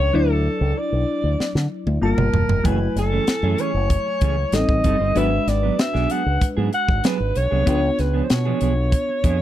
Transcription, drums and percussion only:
1.40 snare
1.56 snare
1.87 high tom
2.18 mid tom
2.34 floor tom
2.49 floor tom
2.65 kick, closed hi-hat
2.97 snare, closed hi-hat
3.27 snare, closed hi-hat
3.58 closed hi-hat
3.90 kick, closed hi-hat
4.21 kick, closed hi-hat
4.52 snare, closed hi-hat
4.69 kick
4.84 kick, closed hi-hat
5.16 closed hi-hat
5.48 snare, closed hi-hat
5.79 snare, closed hi-hat
5.95 snare
6.10 closed hi-hat
6.41 kick, closed hi-hat
6.73 closed hi-hat
6.89 kick
7.04 snare, closed hi-hat
7.36 closed hi-hat
7.67 kick, closed hi-hat
7.99 snare, closed hi-hat
8.30 snare, closed hi-hat
8.61 closed hi-hat
8.92 kick, closed hi-hat
9.24 kick, closed hi-hat

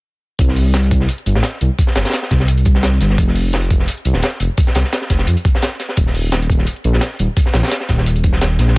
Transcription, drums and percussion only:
0.39 kick, closed hi-hat
0.49 snare
0.56 closed hi-hat, open hi-hat
0.74 snare, closed hi-hat
0.83 closed hi-hat
0.91 kick, closed hi-hat
1.00 snare
1.09 closed hi-hat
1.18 closed hi-hat
1.26 closed hi-hat
1.35 snare
1.43 snare, closed hi-hat
1.61 closed hi-hat
1.79 kick, closed hi-hat
1.87 snare
1.95 snare, closed hi-hat
2.05 snare, closed hi-hat
2.09 snare, closed hi-hat
2.13 snare, closed hi-hat
2.22 snare
2.31 kick, snare, closed hi-hat
2.40 snare
2.48 closed hi-hat
2.58 closed hi-hat
2.65 kick, closed hi-hat
2.75 snare
2.83 snare, closed hi-hat
3.01 snare, closed hi-hat
3.10 snare
3.18 kick, closed hi-hat
3.28 snare
3.35 closed hi-hat, open hi-hat
3.53 snare, closed hi-hat
3.62 closed hi-hat
3.70 kick, closed hi-hat
3.80 snare
3.88 closed hi-hat
3.97 closed hi-hat
4.05 closed hi-hat
4.14 snare
4.22 snare, closed hi-hat
4.40 closed hi-hat
4.57 kick, closed hi-hat
4.67 snare, closed hi-hat
4.75 snare, closed hi-hat
4.84 snare
4.92 snare, closed hi-hat
5.01 snare
5.10 kick, snare, closed hi-hat
5.19 snare, closed hi-hat
5.27 closed hi-hat
5.37 closed hi-hat
5.45 kick, closed hi-hat
5.55 snare
5.62 snare, closed hi-hat
5.80 snare, closed hi-hat
5.89 snare
5.97 kick, closed hi-hat
6.07 snare
6.15 closed hi-hat, open hi-hat
6.32 snare, closed hi-hat
6.42 closed hi-hat
6.50 kick, closed hi-hat
6.59 snare
6.66 closed hi-hat
6.76 closed hi-hat
6.84 closed hi-hat
6.93 snare
7.01 snare, closed hi-hat
7.19 closed hi-hat
7.37 kick, closed hi-hat
7.46 snare
7.53 snare, closed hi-hat
7.63 snare, closed hi-hat
7.67 snare, closed hi-hat
7.71 snare, closed hi-hat
7.80 snare
7.89 kick, snare, closed hi-hat
7.98 snare
8.06 closed hi-hat
8.16 closed hi-hat
8.24 kick, closed hi-hat
8.33 snare
8.41 snare, closed hi-hat
8.59 snare, closed hi-hat
8.68 snare

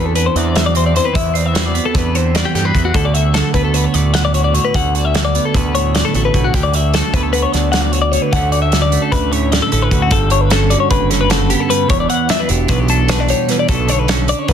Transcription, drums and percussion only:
0.15 closed hi-hat
0.36 closed hi-hat
0.55 snare, closed hi-hat
0.75 closed hi-hat
0.96 closed hi-hat
1.15 kick, closed hi-hat
1.35 closed hi-hat
1.55 snare, closed hi-hat
1.75 closed hi-hat
1.95 kick, snare, closed hi-hat
2.15 closed hi-hat
2.35 snare, closed hi-hat
2.55 snare, closed hi-hat
2.75 kick, closed hi-hat
2.94 kick, closed hi-hat
3.14 closed hi-hat
3.34 snare, closed hi-hat
3.54 kick, closed hi-hat
3.74 closed hi-hat
3.94 closed hi-hat
4.14 snare, closed hi-hat
4.34 closed hi-hat
4.55 closed hi-hat
4.74 kick, closed hi-hat
4.95 closed hi-hat
5.14 snare, closed hi-hat
5.35 closed hi-hat
5.54 kick, closed hi-hat
5.75 closed hi-hat
5.95 snare, closed hi-hat
6.14 closed hi-hat
6.34 kick, closed hi-hat
6.54 kick, closed hi-hat
6.73 closed hi-hat
6.94 snare, closed hi-hat
7.14 kick, closed hi-hat
7.33 closed hi-hat
7.53 snare, closed hi-hat
7.73 snare, closed hi-hat
7.93 closed hi-hat
8.13 closed hi-hat
8.33 kick, closed hi-hat
8.52 closed hi-hat
8.72 snare, closed hi-hat
8.92 closed hi-hat
9.12 kick, snare, closed hi-hat
9.32 closed hi-hat
9.52 snare, closed hi-hat
9.72 closed hi-hat
9.91 kick, closed hi-hat
10.11 kick, closed hi-hat
10.30 closed hi-hat
10.50 snare, closed hi-hat
10.71 closed hi-hat
10.90 kick, closed hi-hat
11.11 snare, closed hi-hat
11.30 snare, closed hi-hat
11.50 closed hi-hat
11.70 closed hi-hat
11.89 kick, closed hi-hat
12.10 closed hi-hat
12.29 snare, closed hi-hat
12.49 closed hi-hat
12.68 kick, snare, closed hi-hat
12.88 closed hi-hat
13.08 snare, closed hi-hat
13.28 closed hi-hat
13.49 snare, closed hi-hat
13.68 kick, closed hi-hat
13.88 closed hi-hat
14.08 snare, closed hi-hat
14.28 closed hi-hat
14.48 kick, snare, closed hi-hat

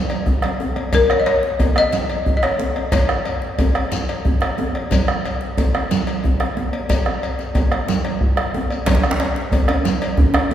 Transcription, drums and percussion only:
0.09 bombo rim, cowbell, djembe slap, high conga, shekere
0.26 bombo rim, bombo low, djembe bass
0.42 bombo rim, cowbell, djembe slap, low conga
0.60 high conga, djembe tone
0.76 bombo rim, cowbell, high conga
0.93 bombo low, cowbell, djembe slap, djembe bass, low conga, shekere
1.09 bombo rim, shekere
1.27 cowbell, shekere
1.43 djembe slap
1.59 bombo low, cowbell, djembe tone, high conga, djembe bass, shekere
1.76 bombo rim, cowbell
1.92 bombo rim, djembe slap, low conga, shekere
2.10 cowbell, shekere
2.26 bombo low, djembe bass
2.42 bombo rim, cowbell, djembe slap
2.59 djembe tone, high conga
2.76 bombo rim, cowbell, high conga
2.92 bombo low, cowbell, djembe slap, djembe bass, low conga, shekere
3.09 bombo rim, shekere
3.25 cowbell, shekere
3.42 djembe slap
3.58 bombo low, cowbell, djembe tone, high conga, djembe bass, shekere
3.75 bombo rim, cowbell
3.92 bombo rim, djembe slap, low conga, shekere
4.09 cowbell, shekere
4.25 bombo low, djembe bass
4.41 bombo rim, cowbell, djembe slap
4.58 djembe tone, high conga
4.75 bombo rim, cowbell, high conga
4.91 bombo low, cowbell, djembe slap, djembe bass, low conga, shekere
5.08 bombo rim, shekere
5.25 cowbell, shekere
5.41 djembe slap
5.58 bombo low, cowbell, djembe tone, high conga, djembe bass, shekere
5.75 bombo rim, cowbell
5.91 bombo rim, djembe slap, low conga, shekere
6.07 cowbell, shekere
6.24 bombo low, djembe bass
6.40 bombo rim, cowbell, djembe slap
6.57 djembe tone, high conga
6.73 cowbell, high conga
6.89 bombo rim, bombo low, cowbell, djembe slap, djembe bass, low conga, shekere
7.06 bombo rim, djembe slap, high conga
7.23 cowbell, shekere
7.39 djembe slap, shekere
7.55 bombo low, cowbell, djembe slap, djembe tone, high conga, djembe bass, shekere
7.72 bombo rim, cowbell, high conga
7.88 djembe slap, low conga, shekere
8.05 bombo rim, cowbell, djembe slap
8.21 bombo low
8.37 bombo rim, cowbell, djembe slap
8.54 djembe tone, high conga
8.70 bombo rim, cowbell, high conga, shekere
8.86 bombo low, cowbell, djembe slap, low conga, djembe bass, shekere
8.95 djembe slap
9.04 bombo rim, shekere
9.11 djembe slap
9.20 cowbell, djembe slap, shekere
9.36 djembe slap
9.52 bombo low, cowbell, high conga, djembe tone, djembe bass, shekere
9.68 bombo rim, cowbell, djembe tone
9.85 bombo rim, djembe slap, low conga, shekere
10.02 cowbell, shekere
10.18 bombo low, djembe bass
10.34 bombo rim, cowbell, djembe slap, djembe tone
10.51 djembe tone, high conga

